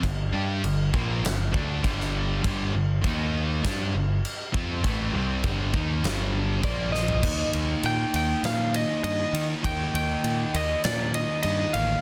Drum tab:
CC |x---x---x---x---|x---x---x---x---|x---x---x---x---|x---------------|
RD |----------------|----------------|----------------|--x-x-x-x-x-x-x-|
SD |--------o----o--|--------o-------|--------o-----o-|--------o-------|
FT |----------------|----------------|---------------o|----------------|
BD |o-----o---o-o---|o---o---o-----o-|o---o-o-----o---|o---------------|

CC |----------------|
RD |x-x-x-x-x-x-x-x-|
SD |--------o-------|
FT |----------------|
BD |o---------------|